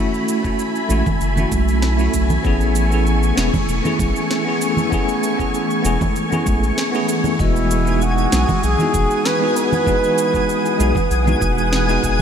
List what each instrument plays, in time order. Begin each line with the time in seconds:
Already playing: tine electric piano A3 C#4 E4, string machine A3 E4 G#5 B5
0.00 tine electric piano F#4
0.14 cabasa
0.28 cabasa
0.43 tine electric piano A3 C#4 E4 F#4, kick, cabasa
0.59 cabasa
0.75 cabasa
0.88 sub bass A1, tine electric piano A3 C#4 E4 F#4, high conga, cabasa
1.06 kick, high conga, low conga, cabasa
1.21 sub bass F#1, cabasa
1.36 tine electric piano A3 C#4 E4 F#4, low conga, cabasa
1.52 sub bass B1, kick, high conga, cabasa
1.68 cabasa
1.82 snare, cabasa
1.97 tine electric piano A3 C#4 E4 F#4, cabasa
2.14 sub bass B1, kick, cabasa
2.30 low conga, cabasa
2.43 sub bass A1, string machine E3 C#6, tine electric piano B3 C#4 E4 G#4, kick, cabasa
2.61 cabasa
2.75 cabasa
2.90 tine electric piano B3 C#4 E4 G#4, cabasa
3.06 cabasa
3.23 cabasa
3.36 sub bass E1, tine electric piano B3 C#4 E4 G#4, snare, high conga, cabasa
3.54 kick, high conga, low conga, cabasa
3.68 sub bass E1, cabasa
3.83 tine electric piano B3 C#4 E4 G#4, low conga, cabasa
3.99 sub bass A1, kick, high conga, cabasa
4.16 cabasa
4.31 snare, cabasa
4.45 tine electric piano B3 C#4 E4 G#4
4.61 cabasa
4.77 low conga, cabasa
4.90 tine electric piano B3 C#4 E4 G#4, kick, cabasa
5.09 cabasa
5.23 cabasa
5.37 tine electric piano B3 C#4 E4 G#4, kick, cabasa
5.54 cabasa
5.71 cabasa
5.83 sub bass E1, tine electric piano B3 C#4 E4 G#4, high conga, cabasa
6.01 kick, high conga, low conga, cabasa
6.16 cabasa
6.30 tine electric piano B3 C#4 E4 G#4, low conga, cabasa
6.46 sub bass A1, kick, high conga, cabasa
6.63 cabasa
6.78 snare, cabasa
6.92 tine electric piano B3 C#4 E4 G#4, cabasa
7.09 cabasa
7.24 low conga, cabasa
7.38 sub bass E1, tine electric piano G#3 B3 F#4 D#5, flugelhorn E4, string machine G#4 F#5 D#6, synth texture G#5 G#6, kick, cabasa
7.56 cabasa
7.71 cabasa
7.85 tine electric piano G#3 B3 D#4 F#4, cabasa
8.02 flugelhorn F#4, cabasa
8.18 cabasa
8.30 sub bass B1, tine electric piano G#3 B3 D#4 F#4, snare, high conga, cabasa
8.49 kick, high conga, low conga, cabasa
8.63 sub bass B1, flugelhorn G#4, cabasa
8.77 tine electric piano G#3 B3 D#4 F#4, low conga, cabasa
8.94 sub bass E1, kick, high conga, cabasa
9.11 cabasa
9.25 flugelhorn B4, snare, cabasa
9.40 tine electric piano G#3 B3 D#4 F#4
9.56 flugelhorn B4, cabasa
9.72 low conga, cabasa
9.85 tine electric piano G#3 B3 D#4 F#4, kick, cabasa
10.04 cabasa
10.18 cabasa
10.32 tine electric piano G#3 B3 D#4 F#4, kick, cabasa
10.49 cabasa
10.66 cabasa
10.78 sub bass B1, tine electric piano G#3 B3 D#4 F#4, high conga, cabasa
10.95 kick, high conga, low conga, cabasa
11.11 sub bass B1, cabasa
11.25 tine electric piano G#3 B3 D#4 F#4, low conga, cabasa
11.41 sub bass E1, kick, high conga, cabasa
11.58 cabasa
11.73 snare, cabasa
11.87 tine electric piano G#3 B3 D#4 F#4, cabasa
12.03 sub bass E1, kick, cabasa